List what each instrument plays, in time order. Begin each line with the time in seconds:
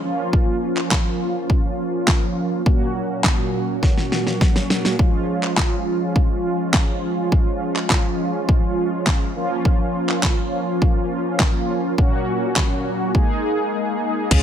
0.03 analog polysynth F3 A#3 C#4 F4
0.33 kick
0.77 clap
0.91 kick, snare, clap
1.50 kick
2.07 kick, snare, clap
2.66 analog polysynth A#2 F#3 A#3 C#4 F#4, kick
3.24 kick, snare, clap
3.83 kick, snare
3.97 snare
4.12 snare
4.27 snare
4.41 kick, snare
4.56 snare
4.70 snare
4.85 snare
4.99 analog polysynth F3 G#3 C#4 F4, kick
5.43 clap
5.57 kick, snare, clap
6.16 kick
6.73 kick, snare, clap
7.32 kick
7.76 clap
7.90 kick, snare, clap
8.49 kick
9.06 kick, snare, clap
9.36 analog polysynth F3 A#3 C#4 F4
9.65 kick
10.09 clap
10.23 kick, snare, clap
10.82 kick
11.39 kick, snare, clap
11.98 analog polysynth A#2 F#3 A#3 C#4 F#4, kick
12.56 kick, snare, clap
13.14 analog polysynth G#3 A#3 D#4 G#4, kick
14.31 sub bass C#2, analog polysynth G#3 C#4 F4 G#4, kick, closed hi-hat, crash